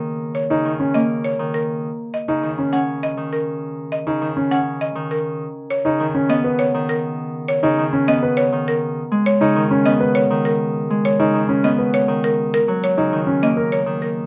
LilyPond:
<<
  \new Staff \with { instrumentName = "Marimba" } { \time 3/4 \key b \major \tempo 4 = 101 r8 cis''16 r8. dis''16 r16 cis''16 r16 ais'16 r16 | r8 dis''16 r8. fis''16 r16 dis''16 r16 ais'16 r16 | r8 dis''16 r8. fis''16 r16 dis''16 r16 ais'16 r16 | r8 cis''16 r8. dis''16 r16 cis''16 r16 ais'16 r16 |
r8 cis''16 r8. dis''16 r16 cis''16 r16 ais'16 r16 | r8 cis''16 r8. dis''16 r16 cis''16 r16 ais'16 r16 | r8 cis''16 r8. dis''16 r16 cis''16 r16 ais'16 r16 | ais'16 r16 cis''16 r8. dis''16 r16 cis''16 r16 ais'16 r16 | }
  \new Staff \with { instrumentName = "Grand piano" } { \time 3/4 \key b \major r8. dis'16 r16 cis'16 r4. | r8. dis'16 r16 cis'16 r4. | r8. dis'16 r16 cis'16 r4. | r8. dis'16 r16 cis'16 r16 b'16 r4 |
r8. dis'16 r16 cis'16 r16 b'16 r4 | r8. dis'16 r16 cis'16 r16 b'16 r4 | r8. dis'16 r16 cis'16 r16 b'16 r4 | r8. dis'16 r16 cis'16 r16 ais'16 r4 | }
  \new Staff \with { instrumentName = "Harp" } { \clef bass \time 3/4 \key b \major <cis dis ais b>8. cis16 dis8 ais8. dis8. | r8. cis16 dis8 cis'8. dis8.~ | dis8. cis16 dis8 cis'8. dis8. | r8. cis16 dis8 b8. dis8.~ |
dis8. cis16 dis8 b8. dis8. | r16 gis8 cis16 dis8 b8. dis8.~ | dis16 gis8 cis16 dis8 b8. dis8. | r16 fis8 cis16 dis8 ais8. dis8. | }
>>